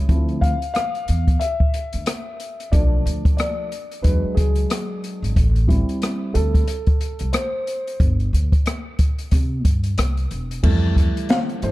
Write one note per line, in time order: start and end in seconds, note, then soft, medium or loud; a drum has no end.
0.08 0.52 D2 loud
0.08 0.55 F3 medium
0.08 0.56 C4 soft
0.08 0.56 E4 medium
0.08 kick medium
0.08 closed hi-hat medium
0.29 closed hi-hat soft
0.41 0.72 F5 loud
0.41 kick medium
0.41 closed hi-hat medium
0.62 closed hi-hat soft
0.74 1.42 F5 loud
0.74 cross-stick loud
0.74 closed hi-hat medium
0.95 closed hi-hat soft
1.08 1.36 E2 medium
1.08 closed hi-hat medium
1.28 kick medium
1.28 closed hi-hat soft
1.39 2.76 E5 medium
1.39 closed hi-hat medium
1.60 kick medium
1.74 closed hi-hat medium
1.93 2.05 D2 medium
1.93 closed hi-hat medium
2.06 cross-stick loud
2.06 closed hi-hat loud
2.40 closed hi-hat medium
2.60 closed hi-hat soft
2.72 3.00 B1 medium
2.72 3.67 F3 medium
2.72 3.68 A3 medium
2.72 3.68 D4 medium
2.72 3.35 D5 medium
2.72 kick loud
2.72 closed hi-hat medium
3.06 3.22 D2 medium
3.06 closed hi-hat medium
3.25 kick loud
3.25 closed hi-hat soft
3.37 4.06 D5 medium
3.37 cross-stick loud
3.37 closed hi-hat medium
3.72 closed hi-hat medium
3.92 closed hi-hat soft
4.02 4.21 E2 medium
4.02 5.32 F#3 soft
4.02 5.32 G#3 soft
4.02 5.32 D4 medium
4.02 4.38 B4 medium
4.02 kick medium
4.02 closed hi-hat medium
4.24 muted upright bass stroke soft
4.35 4.65 C#2 medium
4.35 4.98 G#4 medium
4.35 kick medium
4.35 closed hi-hat medium
4.55 closed hi-hat medium
4.70 cross-stick loud
4.70 closed hi-hat medium
5.04 closed hi-hat medium
5.23 5.34 G#1 medium
5.23 closed hi-hat medium
5.36 5.80 A1 loud
5.36 kick loud
5.36 closed hi-hat medium
5.56 closed hi-hat soft
5.68 6.63 G3 medium
5.68 6.64 C4 soft
5.68 6.64 E4 medium
5.68 kick medium
5.68 closed hi-hat medium
5.89 closed hi-hat soft
6.02 cross-stick loud
6.02 closed hi-hat medium
6.34 6.62 D2 loud
6.34 7.37 A4 medium
6.34 closed hi-hat medium
6.55 kick medium
6.55 closed hi-hat medium
6.68 closed hi-hat medium
6.87 kick medium
6.87 closed hi-hat soft
7.01 closed hi-hat medium
7.19 7.32 C2 medium
7.19 closed hi-hat medium
7.33 8.01 C5 medium
7.33 cross-stick loud
7.33 closed hi-hat loud
7.67 closed hi-hat medium
7.87 closed hi-hat medium
8.00 8.27 G1 loud
8.00 kick loud
8.00 closed hi-hat medium
8.20 closed hi-hat soft
8.33 8.49 D2 medium
8.33 closed hi-hat medium
8.52 kick medium
8.52 closed hi-hat soft
8.66 cross-stick loud
8.66 closed hi-hat medium
8.99 kick medium
8.99 closed hi-hat medium
9.19 closed hi-hat soft
9.31 9.65 C3 loud
9.31 kick medium
9.31 closed hi-hat medium
9.65 9.92 G2 medium
9.65 kick medium
9.65 closed hi-hat medium
9.84 closed hi-hat medium
9.98 10.25 C2 medium
9.98 cross-stick loud
9.98 closed hi-hat loud
10.17 closed hi-hat soft
10.31 10.58 E1 medium
10.31 closed hi-hat medium
10.51 closed hi-hat medium
10.63 11.07 F2 medium
10.63 11.61 E3 medium
10.63 11.62 G3 soft
10.63 11.62 A3 medium
10.63 kick loud
10.63 crash medium
10.96 kick medium
10.96 closed hi-hat medium
11.17 closed hi-hat soft
11.29 11.37 F5 loud
11.29 snare loud
11.29 closed hi-hat medium
11.49 closed hi-hat soft
11.62 11.72 G2 medium
11.62 11.72 E3 soft
11.62 11.72 G3 soft
11.62 11.72 A3 medium
11.62 11.72 C5 medium
11.62 closed hi-hat medium